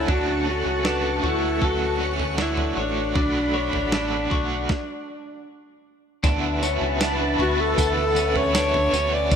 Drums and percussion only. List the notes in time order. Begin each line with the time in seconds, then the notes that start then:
0.08 kick, floor tom
0.85 snare
1.24 floor tom
1.62 kick
2.20 floor tom
2.38 snare
2.57 floor tom
3.16 kick, floor tom
3.73 floor tom
3.92 snare
4.31 kick, floor tom
4.69 kick, snare
6.24 kick, floor tom, tambourine
6.63 tambourine
7.01 snare, tambourine
7.40 floor tom
7.78 kick, tambourine
8.16 tambourine
8.36 floor tom
8.55 snare, tambourine
8.74 floor tom
8.94 tambourine
9.32 kick, floor tom, tambourine